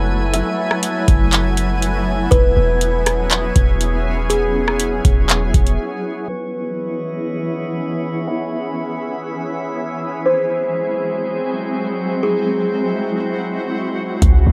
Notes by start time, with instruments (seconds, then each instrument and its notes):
Already playing: 808-style bass F#1, ambient pad F#3 A3 B3 E4 G#5, synth texture E4 A4 B4 G#5
0.34 kalimba E5, closed hi-hat
0.71 cross-stick
0.83 closed hi-hat
1.08 808-style bass F#1, kick, closed hi-hat
1.33 clap, closed hi-hat
1.57 closed hi-hat
1.82 closed hi-hat
2.31 808-style bass E1, ambient pad C#4 G#4, synth texture F#4 C#5, kalimba B4, kick, closed hi-hat
2.57 808-style bass E1
2.81 closed hi-hat
3.06 cross-stick, closed hi-hat
3.31 clap, closed hi-hat
3.56 808-style bass E1, kick, closed hi-hat
3.81 closed hi-hat
4.30 kalimba G#4, closed hi-hat
4.68 cross-stick
4.80 closed hi-hat
5.05 808-style bass E1, kick, closed hi-hat
5.29 clap, closed hi-hat
5.54 808-style bass E1, kick, closed hi-hat
5.67 closed hi-hat
6.29 ambient pad E3 B3 C#4 E4 G#4, synth texture B3 E4 C#5 D#5, kalimba B4
8.27 synth texture E5, kalimba E5
10.25 ambient pad F#3 G#3 C4, synth texture G#3 F#4 C5, kalimba C5
12.23 ambient pad F#4, kalimba G#4
14.22 808-style bass C#2, ambient pad E3 B3 C#4 G#4 D#5, synth texture B3 E4 D#5, kick, closed hi-hat
14.47 808-style bass B1